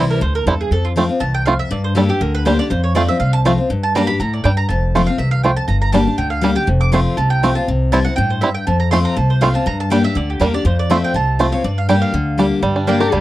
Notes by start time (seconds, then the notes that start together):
Already playing: C2 C3 E3 G3 C4 E4 C5
0.10 A#4
0.21 D2 A2 C5
0.35 A#4
0.46 E2 G2 G3 C4 E4 A4
0.61 G#4
0.71 F2 A4
0.85 F4
0.96 F3 A3 C4 F4
1.09 C4 F4
1.20 C2 E2 A5
1.34 G5
1.46 F2 A3 C4 F4 F5
1.59 E5
1.71 G2 D5
1.84 C5
1.95 G3 A#3 D4 G4 A4
2.09 D4 G4
2.21 D2 D3 A#4
2.35 B4
2.45 G3 A#3 D4 G4 C5
2.59 D4 G4 D5
2.70 F2 C5
2.84 C#5
2.95 F3 A3 C4 F4 D5
3.08 C4 F4 E5
3.20 C2 C3 F5
3.33 A5
3.45 F3 A3 C4 F4
3.58 C4 F4
3.70 G2
3.83 A5
3.95 G3 A#3 D4 G4 A#5
4.07 D4 G4 B5
4.20 A2 A#5
4.33 D5
4.44 G2 G3 D4 G5
4.57 A#5
4.69 F1 F2 A5
4.95 F3 A3 C4 F4
5.07 C4 F4 F5
5.18 C2 E2 E5
5.31 F5
5.43 F2 A3 C4 F4 G5
5.56 A5
5.68 G1 G2 A#5
5.82 A#5
5.92 G3 A#3 D4 G4 A5
6.05 D4 G4
6.18 D2 D3 G5
6.30 F5
6.41 G3 A#3 D4 G4
6.55 D4 G4 G5
6.67 F1 F2
6.81 D6
6.92 F3 A3 C4 F4 C6
7.17 C2 C3 A5
7.30 G5
7.43 F3 A3 C4 F4
7.55 C4 F4 A5
7.68 C2 C3
7.92 E3 G3 C4 E4 A5
8.05 C4 E4 F#5
8.16 G2 A2 G5
8.30 C5
8.41 G2 G3 C4 E4 E5
8.54 G5
8.67 F2 A5
8.80 A#5
8.91 F3 A3 C4 F4 C6
9.05 A#5
9.16 C2 C3 A5
9.30 C5
9.41 F3 A3 C4 F4 F5
9.54 C4 F4 A5
9.66 G2 A#5
9.80 A5
9.90 G3 A#3 D4 G4 G5
10.03 D4 G4 E5
10.15 D2 D3 D5
10.30 G4
10.40 E2 G3 A#3 D4 G4 A#4
10.54 D4 G4 D5
10.65 F2 C5
10.79 D5
10.90 F3 A3 C4 F4 E5
11.04 G5
11.14 C2 C3 A5
11.39 F3 A3 C4 F4
11.52 C4 F4 C#5
11.64 G2 D5
11.78 F5
11.89 G3 A#3 D4 G4 G5
12.02 F5
12.13 D2 D3
12.38 G3 A#3 D4 G4
12.62 G1 G2 G3
12.76 D4
12.87 G3 A#3 D4 G4 D5 G5
13.00 D4 G4 A#4
13.12 D2 D3 G3 G4